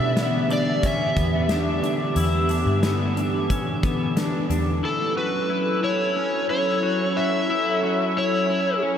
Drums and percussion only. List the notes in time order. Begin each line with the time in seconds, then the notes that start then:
0.17 snare, closed hi-hat
0.50 closed hi-hat
0.83 kick, closed hi-hat
1.17 kick, closed hi-hat
1.49 snare, closed hi-hat
1.84 closed hi-hat
2.16 closed hi-hat
2.49 closed hi-hat
2.83 snare, closed hi-hat
3.17 closed hi-hat
3.50 kick, closed hi-hat
3.83 kick, closed hi-hat
4.17 snare, closed hi-hat
4.51 closed hi-hat